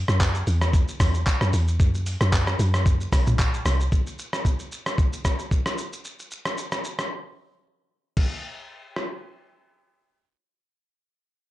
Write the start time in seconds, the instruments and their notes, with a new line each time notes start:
0.08 log drum bass F#2, cross-stick, shaker
0.20 kick, clap, shaker
0.35 shaker
0.47 log drum bass E2, open hi-hat, shaker
0.61 cross-stick, shaker
0.73 kick, shaker
0.88 shaker
1.00 log drum bass E2, kick, cross-stick, open hi-hat, shaker
1.14 shaker
1.27 kick, clap, shaker
1.41 log drum bass F#2, cross-stick, shaker
1.53 log drum bass E2, open hi-hat, shaker
1.68 shaker
1.80 log drum bass F#2, kick, shaker
1.94 shaker
2.06 open hi-hat, shaker
2.21 log drum bass F#2, cross-stick, shaker
2.33 kick, clap, shaker
2.47 cross-stick, shaker
2.59 log drum bass F#2, open hi-hat, shaker
2.74 cross-stick, shaker
2.86 kick, shaker
3.01 shaker
3.12 log drum bass B1, kick, cross-stick, open hi-hat, shaker
3.27 mid tom, shaker
3.39 kick, clap, shaker
3.54 shaker
3.65 log drum bass C2, cross-stick, open hi-hat, shaker
3.80 shaker
3.92 kick, shaker
4.07 shaker
4.19 shaker
4.33 cross-stick, shaker
4.45 kick, shaker
4.59 shaker
4.72 shaker
4.86 cross-stick, shaker
4.98 kick, shaker
5.13 shaker
5.25 kick, cross-stick, shaker
5.39 shaker
5.51 kick, shaker
5.66 cross-stick, shaker
5.78 shaker
5.93 shaker
6.05 shaker
6.19 shaker
6.31 shaker
6.45 cross-stick, shaker
6.58 shaker
6.72 cross-stick, shaker
6.84 shaker
6.99 cross-stick, shaker
8.17 kick, crash
8.96 cross-stick